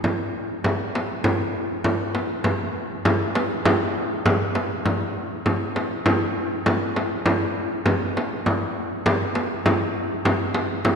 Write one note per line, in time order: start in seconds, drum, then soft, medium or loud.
0.04 frame drum medium
0.64 frame drum medium
0.95 frame drum medium
1.24 frame drum medium
1.84 frame drum medium
2.15 frame drum medium
2.44 frame drum medium
3.05 frame drum medium
3.35 frame drum medium
3.65 frame drum loud
4.26 frame drum medium
4.55 frame drum medium
4.86 frame drum medium
5.46 frame drum medium
5.76 frame drum medium
6.06 frame drum medium
6.66 frame drum medium
6.96 frame drum medium
7.26 frame drum medium
7.86 frame drum medium
8.17 frame drum medium
8.46 frame drum medium
9.06 frame drum medium
9.35 frame drum medium
9.66 frame drum medium
10.25 frame drum medium
10.55 frame drum medium
10.85 frame drum medium